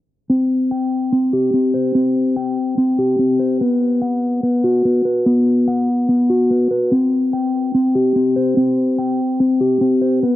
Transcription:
0.30 1.11 C4 medium
0.71 1.95 G5 medium
1.12 1.52 C4 medium
1.33 2.57 G4 medium
1.54 1.94 C4 medium
1.74 2.98 C5 medium
1.95 2.77 C4 loud
2.36 3.61 G5 medium
2.78 3.18 C4 medium
2.99 3.61 G4 medium
3.19 3.60 C4 medium
3.39 3.60 C5 medium
3.61 4.42 B3 medium
4.02 5.26 F#5 medium
4.43 4.84 B3 medium
4.64 5.88 F#4 medium
4.85 5.05 B3 medium
5.05 6.29 B4 medium
5.26 6.08 B3 medium
5.68 6.92 F#5 loud
6.09 6.49 B3 medium
6.30 6.92 F#4 medium
6.51 6.70 B3 medium
6.71 6.92 B4 medium
6.92 7.73 C4 medium
7.33 8.57 G5 medium
7.74 8.15 C4 medium
7.95 9.19 G4 medium
8.16 8.56 C4 medium
8.36 9.60 C5 medium
8.57 9.39 C4 loud
8.98 10.23 G5 medium
9.40 9.80 C4 medium
9.61 10.23 G4 medium
9.81 10.23 C4 medium
10.01 10.22 C5 medium
10.23 10.36 B3 medium

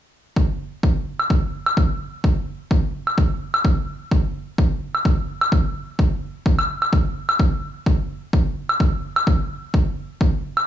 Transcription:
0.36 kick loud
0.83 kick loud
1.20 high woodblock medium
1.30 kick loud
1.66 high woodblock medium
1.77 kick loud
2.24 kick loud
2.71 kick loud
3.07 high woodblock medium
3.18 kick loud
3.54 high woodblock medium
3.65 kick loud
4.11 kick loud
4.58 kick loud
4.95 high woodblock medium
5.05 kick loud
5.41 high woodblock medium
5.52 kick loud
5.99 kick loud
6.46 kick loud
6.59 high woodblock medium
6.82 high woodblock medium
6.93 kick loud
7.29 high woodblock medium
7.40 kick loud
7.86 kick loud
8.33 kick loud
8.69 high woodblock medium
8.80 kick loud
9.16 high woodblock medium
9.27 kick loud
9.74 kick loud
10.21 kick loud
10.57 high woodblock medium

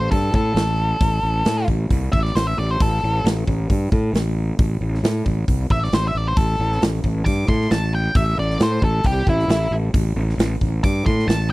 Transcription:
0.00 0.11 C5 medium
0.11 0.30 G2 medium
0.11 0.33 A4 medium
0.11 kick medium
0.11 open hi-hat medium
0.34 0.52 A2 medium
0.34 1.65 A4 medium
0.34 kick medium
0.54 0.91 A1 medium
0.54 snare loud
0.54 open hi-hat soft
1.01 1.19 A1 loud
1.01 kick loud
1.01 open hi-hat medium
1.23 1.41 A1 medium
1.45 1.64 A2 medium
1.45 snare loud
1.45 open hi-hat medium
1.68 1.86 A1 medium
1.68 kick medium
1.90 2.09 C2 medium
1.90 kick medium
1.90 open hi-hat medium
2.12 2.32 A1 medium
2.12 2.23 E5 medium
2.12 kick medium
2.23 2.35 D5 medium
2.23 snare soft
2.35 2.53 A1 medium
2.35 2.46 C5 loud
2.35 snare loud
2.35 open hi-hat medium
2.47 2.58 E5 medium
2.58 2.76 A1 medium
2.58 2.71 D5 medium
2.71 2.82 C5 medium
2.80 2.99 A1 loud
2.80 3.24 A4 loud
2.80 kick loud
2.80 open hi-hat medium
3.03 3.21 A1 medium
3.24 3.42 A1 medium
3.24 snare loud
3.24 open hi-hat medium
3.47 3.65 A1 medium
3.47 kick medium
3.69 3.87 G2 medium
3.69 kick medium
3.69 open hi-hat medium
3.92 4.10 A2 medium
3.92 kick medium
4.13 4.49 A1 medium
4.13 snare medium
4.13 open hi-hat medium
4.59 4.77 A1 loud
4.59 kick loud
4.59 open hi-hat medium
4.81 4.99 A1 loud
4.94 snare soft
5.03 5.21 A2 medium
5.03 snare loud
5.03 open hi-hat medium
5.26 5.44 A1 medium
5.26 kick medium
5.48 5.66 C2 medium
5.48 kick medium
5.48 open hi-hat medium
5.70 5.88 A1 medium
5.70 5.84 E5 medium
5.70 kick medium
5.84 5.93 D5 medium
5.84 snare soft
5.92 6.11 A1 medium
5.92 6.04 C5 medium
5.92 snare loud
5.92 open hi-hat medium
6.08 6.17 E5 medium
6.15 6.33 A1 medium
6.15 6.27 D5 medium
6.28 6.37 C5 medium
6.36 6.55 A1 medium
6.36 6.80 A4 loud
6.36 kick loud
6.36 open hi-hat medium
6.59 6.77 A1 loud
6.72 snare soft
6.82 7.00 A1 medium
6.82 snare loud
6.82 open hi-hat medium
7.04 7.22 A1 medium
7.04 kick medium
7.25 7.45 G2 medium
7.25 7.47 D6 loud
7.25 kick medium
7.25 open hi-hat medium
7.48 7.66 A2 medium
7.48 7.70 C6 medium
7.48 kick medium
7.61 snare soft
7.71 8.07 A1 medium
7.71 7.93 A5 loud
7.71 snare medium
7.71 open hi-hat medium
7.95 8.16 G5 medium
8.15 8.33 A1 loud
8.15 8.37 E5 medium
8.15 kick loud
8.15 open hi-hat medium
8.38 8.56 A1 medium
8.38 8.60 D5 medium
8.50 snare soft
8.60 8.78 A2 medium
8.60 8.83 C5 medium
8.60 snare loud
8.60 open hi-hat medium
8.82 9.00 A1 medium
8.82 9.05 A4 medium
8.82 kick medium
9.03 9.22 C2 medium
9.03 9.27 G4 loud
9.03 kick medium
9.03 open hi-hat medium
9.27 9.45 A1 medium
9.27 9.50 E4 medium
9.27 kick medium
9.39 snare soft
9.48 9.67 A1 medium
9.48 9.72 E4 medium
9.48 snare loud
9.48 open hi-hat medium
9.71 9.89 A1 medium
9.94 10.12 A1 medium
9.94 kick loud
9.94 open hi-hat medium
10.16 10.34 A1 loud
10.29 snare soft
10.38 10.56 A1 medium
10.38 snare loud
10.38 open hi-hat medium
10.61 10.79 A1 medium
10.61 kick medium
10.84 11.02 G2 medium
10.84 11.05 D6 loud
10.84 kick medium
10.84 open hi-hat medium
11.06 11.24 A2 medium
11.06 11.28 C6 medium
11.06 kick medium
11.19 snare soft
11.27 11.53 A1 medium
11.27 11.49 A5 loud
11.27 snare loud
11.27 open hi-hat medium

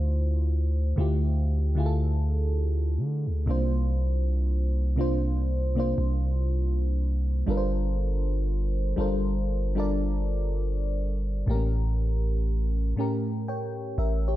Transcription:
0.00 0.94 D2 loud
0.00 0.48 D3 medium
0.00 0.48 A3 medium
0.00 0.49 E4 medium
0.00 0.49 F4 medium
0.00 0.50 C5 medium
0.96 2.99 D2 loud
0.96 1.47 D3 medium
0.96 1.48 A3 medium
0.96 1.48 E4 medium
0.96 1.49 F4 medium
1.00 1.49 G4 medium
1.75 2.90 D3 medium
1.75 2.91 A3 medium
1.75 2.92 E4 medium
1.75 2.92 F4 medium
1.80 1.84 G#4 medium
1.86 2.96 A4 medium
2.98 3.28 D3 loud
3.27 3.47 D2 medium
3.46 5.94 C2 loud
3.46 4.48 C3 medium
3.46 4.48 A#3 medium
3.46 4.49 D4 medium
3.46 4.49 F4 medium
3.51 4.50 C5 medium
4.96 5.47 C3 medium
4.96 5.48 A#3 medium
4.96 5.48 D4 medium
4.96 5.49 F4 medium
5.01 5.50 C5 medium
5.75 6.91 C3 medium
5.75 6.91 A#3 medium
5.75 6.92 D4 medium
5.75 6.92 F4 medium
5.80 6.93 C5 medium
5.98 7.44 C2 loud
7.46 8.94 G1 loud
7.46 8.48 G3 medium
7.46 8.48 D4 medium
7.46 8.49 F4 medium
7.46 8.49 A4 medium
7.46 8.50 A#4 medium
7.51 7.57 B4 medium
7.57 8.53 C5 medium
8.96 11.44 G1 loud
8.96 9.47 G3 medium
8.96 9.48 D4 medium
8.96 9.48 F4 medium
8.96 9.49 A4 medium
8.96 9.49 A#4 medium
9.01 9.50 C5 medium
9.75 10.90 G3 medium
9.75 10.91 D4 medium
9.75 10.91 F4 medium
9.75 10.92 A4 medium
9.75 10.92 A#4 medium
9.80 10.93 D5 medium
11.46 12.94 A1 loud
11.46 12.48 A2 medium
11.46 12.48 A3 medium
11.46 11.56 A#3 medium
11.46 12.49 G4 medium
11.51 12.50 A#4 medium
11.55 12.52 C#4 medium
12.96 13.47 A2 medium
12.96 13.48 A3 medium
12.96 13.48 C#4 medium
12.96 13.49 G4 medium
13.00 13.49 A#4 medium
13.48 13.96 C#5 medium
13.48 13.96 G5 medium
13.98 14.36 A1 loud
13.98 14.26 A#4 medium
13.98 14.26 E5 medium
14.28 14.36 G4 medium
14.28 14.36 C#5 medium

